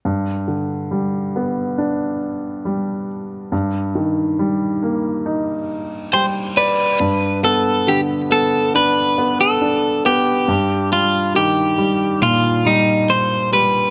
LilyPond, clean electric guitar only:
\new Staff \with { instrumentName = "Clean electric guitar" } { \time 4/4 \key g \major \tempo 4 = 69 r1 | r2. c''8 b'8~ | b'8 a'8 g'8 a'8 b'8. a'8. g'8~ | g'8 f'8 g'4 f'8 ees'8 c''8 b'8 | }